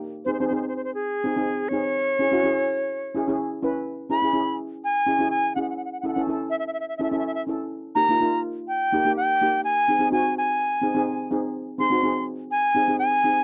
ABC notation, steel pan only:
X:1
M:4/4
L:1/16
Q:1/4=125
K:C#m
V:1 name="Steel pan"
z2 [^B,DG] [B,DG] [B,DG]4 z2 [B,DG] [B,DG]2 z [B,DG]2 | z2 [CEG] [CEF] [CEG]4 z2 [CEG] [CEG]2 z [CEB]2 | z2 [CEG] [CEG] [CEG]4 z2 [CEG] [CEG]2 z [CEG]2 | z2 [CEA] [CEA] [CEA]4 z2 [CEA] [CEA]2 z [CEA]2 |
z2 [^A,D=G] [A,D^E] [A,DE]4 z2 [A,DG] [A,DG]2 z [A,DG]2 | z2 [^B,DG] [B,DG] [B,DF]4 z2 [B,DG] [B,DG]2 z [B,DG]2 | z2 [^B,DG] [B,DF] [B,DG]4 z2 [B,DG] [B,DG]2 z [B,DG]2 |]